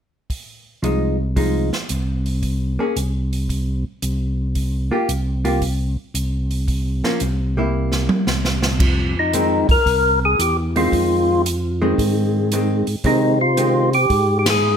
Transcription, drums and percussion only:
0.30 kick soft
0.30 open hi-hat soft
0.84 closed hi-hat soft
1.36 kick soft
1.36 open hi-hat soft
1.73 snare soft
1.89 closed hi-hat soft
2.26 open hi-hat soft
2.43 kick soft
2.43 open hi-hat soft
2.96 closed hi-hat soft
3.33 open hi-hat soft
3.49 kick soft
3.49 open hi-hat soft
4.02 closed hi-hat soft
4.55 kick soft
4.55 open hi-hat soft
5.09 closed hi-hat soft
5.45 open hi-hat soft
5.62 kick soft
5.62 open hi-hat soft
6.15 closed hi-hat soft
6.51 open hi-hat soft
6.68 kick soft
6.68 open hi-hat soft
7.04 snare soft
7.20 closed hi-hat soft
7.92 snare soft
8.09 high tom medium
8.27 snare medium
8.45 snare soft
8.62 snare medium
8.80 kick medium
8.80 crash medium
9.33 closed hi-hat soft
9.69 kick medium
9.69 open hi-hat soft
9.86 kick soft
9.86 open hi-hat soft
10.40 closed hi-hat medium
10.76 open hi-hat soft
10.92 kick soft
10.92 open hi-hat soft
11.46 closed hi-hat soft
11.98 kick soft
11.98 open hi-hat soft
12.52 closed hi-hat medium
12.87 open hi-hat soft
13.04 kick soft
13.04 open hi-hat soft
13.57 closed hi-hat soft
13.93 open hi-hat soft
14.10 kick soft
14.10 open hi-hat soft
14.46 snare medium
14.46 ride medium

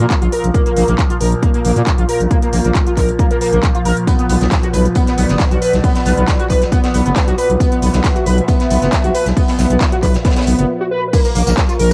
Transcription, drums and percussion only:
0.10 kick loud
0.10 clap loud
0.10 closed hi-hat medium
0.22 closed hi-hat medium
0.32 open hi-hat loud
0.44 closed hi-hat medium
0.54 kick loud
0.54 closed hi-hat medium
0.66 closed hi-hat medium
0.77 open hi-hat loud
0.88 closed hi-hat medium
0.98 kick loud
0.98 clap loud
0.98 closed hi-hat medium
1.10 closed hi-hat medium
1.21 open hi-hat loud
1.32 closed hi-hat medium
1.43 kick loud
1.43 closed hi-hat medium
1.54 closed hi-hat medium
1.65 open hi-hat loud
1.76 closed hi-hat medium
1.87 kick loud
1.87 clap loud
1.87 closed hi-hat medium
1.98 closed hi-hat medium
2.09 open hi-hat loud
2.20 closed hi-hat medium
2.31 kick loud
2.31 closed hi-hat medium
2.42 closed hi-hat medium
2.53 open hi-hat loud
2.64 closed hi-hat medium
2.75 kick loud
2.75 clap loud
2.75 closed hi-hat medium
2.87 closed hi-hat soft
2.97 kick medium
2.97 clap soft
2.97 open hi-hat loud
3.09 closed hi-hat medium
3.19 kick loud
3.19 closed hi-hat medium
3.31 closed hi-hat medium
3.41 open hi-hat loud
3.53 closed hi-hat medium
3.63 kick loud
3.63 clap loud
3.63 closed hi-hat medium
3.75 closed hi-hat medium
3.85 open hi-hat loud
3.97 closed hi-hat medium
4.07 kick loud
4.07 closed hi-hat medium
4.07 closed hi-hat loud
4.19 closed hi-hat soft
4.29 closed hi-hat medium
4.29 open hi-hat loud
4.41 snare medium
4.41 closed hi-hat soft
4.51 kick loud
4.51 snare loud
4.51 clap loud
4.51 closed hi-hat medium
4.63 closed hi-hat soft
4.73 closed hi-hat medium
4.73 open hi-hat loud
4.85 closed hi-hat soft
4.95 kick loud
4.95 closed hi-hat loud
4.95 closed hi-hat medium
5.07 snare soft
5.07 closed hi-hat soft
5.18 closed hi-hat medium
5.18 open hi-hat loud
5.29 snare soft
5.29 closed hi-hat medium
5.39 kick loud
5.39 snare loud
5.39 clap loud
5.39 closed hi-hat medium
5.51 closed hi-hat soft
5.62 closed hi-hat medium
5.62 open hi-hat loud
5.73 snare soft
5.73 closed hi-hat soft
5.84 kick loud
5.84 closed hi-hat medium
5.84 open hi-hat medium
5.95 snare soft
5.95 closed hi-hat medium
6.06 snare soft
6.06 closed hi-hat medium
6.06 open hi-hat loud
6.18 closed hi-hat medium
6.27 kick loud
6.27 snare loud
6.27 clap loud
6.27 closed hi-hat medium
6.40 closed hi-hat soft
6.50 kick medium
6.50 clap soft
6.50 closed hi-hat medium
6.50 open hi-hat loud
6.62 snare soft
6.62 closed hi-hat medium
6.72 kick loud
6.72 closed hi-hat medium
6.84 snare medium
6.84 closed hi-hat soft
6.94 closed hi-hat medium
6.94 open hi-hat loud
7.06 closed hi-hat soft
7.16 kick loud
7.16 snare loud
7.16 clap loud
7.16 closed hi-hat medium
7.28 closed hi-hat soft
7.38 closed hi-hat medium
7.38 open hi-hat medium
7.50 closed hi-hat medium
7.60 kick loud
7.60 closed hi-hat medium
7.72 closed hi-hat medium
7.82 closed hi-hat medium
7.82 open hi-hat loud
7.93 snare medium
7.93 closed hi-hat medium
8.04 kick loud
8.04 snare loud
8.04 clap loud
8.04 closed hi-hat medium
8.16 closed hi-hat medium
8.26 closed hi-hat medium
8.26 open hi-hat loud
8.38 closed hi-hat medium
8.48 kick loud
8.48 closed hi-hat medium
8.60 snare soft
8.60 closed hi-hat medium
8.71 closed hi-hat medium
8.71 open hi-hat loud
8.82 snare soft
8.82 closed hi-hat medium
8.92 kick loud
8.92 snare loud
8.92 clap loud
8.92 closed hi-hat medium
9.04 closed hi-hat soft
9.04 closed hi-hat medium
9.14 closed hi-hat medium
9.14 open hi-hat loud
9.26 snare soft
9.26 closed hi-hat medium
9.37 kick loud
9.37 closed hi-hat medium
9.37 open hi-hat medium
9.48 snare soft
9.48 open hi-hat medium
9.59 snare soft
9.59 closed hi-hat medium
9.59 open hi-hat loud
9.70 closed hi-hat medium
9.81 kick loud
9.81 snare loud
9.81 clap loud
9.81 closed hi-hat medium
9.92 closed hi-hat medium
10.03 kick medium
10.03 clap soft
10.03 closed hi-hat medium
10.03 open hi-hat loud
10.14 snare soft
10.14 closed hi-hat medium
10.25 kick loud
10.25 snare medium
10.25 closed hi-hat medium
10.31 snare loud
10.31 closed hi-hat medium
10.36 snare medium
10.36 closed hi-hat medium
10.42 snare medium
10.42 closed hi-hat medium
10.47 closed hi-hat medium
10.47 open hi-hat loud
10.59 closed hi-hat medium
11.13 kick loud
11.13 closed hi-hat medium
11.13 crash loud
11.13 tambourine medium
11.25 closed hi-hat medium
11.25 tambourine soft
11.35 closed hi-hat medium
11.35 open hi-hat loud
11.47 snare medium
11.47 closed hi-hat medium
11.47 tambourine medium
11.57 kick loud
11.57 snare loud
11.57 clap loud
11.57 closed hi-hat medium
11.69 closed hi-hat medium
11.69 tambourine soft
11.79 closed hi-hat medium
11.79 open hi-hat loud

